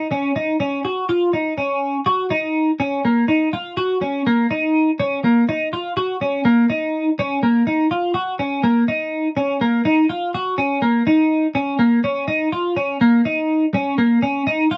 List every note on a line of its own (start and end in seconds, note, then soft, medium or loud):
0.11 0.31 C#4 medium
0.36 0.56 D#4 medium
0.60 0.80 C#4 medium
0.85 1.04 F#4 medium
1.09 1.29 F4 medium
1.33 1.53 D#4 medium
1.58 1.97 C#4 medium
2.06 2.26 F#4 medium
2.30 2.70 D#4 medium
2.80 2.99 C#4 medium
3.05 3.24 A#3 medium
3.28 3.48 D#4 medium
3.53 3.73 F4 medium
3.77 3.97 F#4 medium
4.02 4.21 C#4 medium
4.27 4.46 A#3 medium
4.51 4.90 D#4 medium
5.00 5.19 C#4 medium
5.24 5.43 A#3 medium
5.49 5.68 D#4 medium
5.73 5.92 F4 medium
5.97 6.16 F#4 medium
6.21 6.41 C#4 medium
6.45 6.65 A#3 medium
6.70 7.09 D#4 medium
7.19 7.38 C#4 medium
7.43 7.62 A#3 medium
7.67 7.86 D#4 medium
7.91 8.11 F4 medium
8.14 8.34 F#4 medium
8.39 8.59 C#4 medium
8.63 8.83 A#3 medium
8.88 9.28 D#4 medium
9.37 9.56 C#4 medium
9.61 9.81 A#3 medium
9.85 10.05 D#4 medium
10.09 10.29 F4 medium
10.34 10.54 F#4 medium
10.58 10.78 C#4 medium
10.82 11.02 A#3 medium
11.07 11.46 D#4 medium
11.55 11.75 C#4 medium
11.79 11.99 A#3 medium
12.04 12.24 C#4 medium
12.28 12.48 D#4 medium
12.52 12.72 F4 medium
12.77 12.96 C#4 medium
13.01 13.21 A#3 medium
13.25 13.65 D#4 medium
13.74 13.94 C#4 medium
13.98 14.18 A#3 medium
14.22 14.42 C#4 medium
14.47 14.66 D#4 medium
14.71 14.77 F4 medium